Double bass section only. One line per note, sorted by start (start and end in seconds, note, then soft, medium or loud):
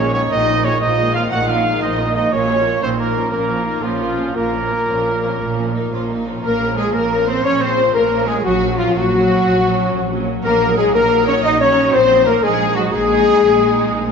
0.00 0.26 A#1 medium
0.32 0.76 A#1 medium
0.82 1.26 A#1 medium
1.32 1.76 A#1 medium
1.82 2.27 A#1 medium
2.32 2.76 A#1 medium
2.83 3.27 A#1 medium
3.32 3.77 A#1 medium
3.83 4.30 A#1 medium
4.37 4.83 A#1 medium
4.89 5.35 A#1 medium
5.41 5.86 A#1 medium
5.92 6.37 A#1 medium
6.44 6.88 A#1 medium
6.94 7.38 A#1 medium
7.45 7.89 A#1 medium
7.94 8.39 A#1 medium
8.45 8.89 A#1 medium
8.95 9.39 A#1 medium
9.45 9.89 A#1 medium
9.94 10.38 A#1 medium
10.44 10.88 A#1 loud
10.94 11.38 A#1 medium
11.44 11.88 A#1 medium
11.94 12.38 A#1 loud
12.44 12.87 A#1 loud
12.93 13.37 A#1 loud
13.43 13.86 A#1 loud
13.92 14.12 A#1 loud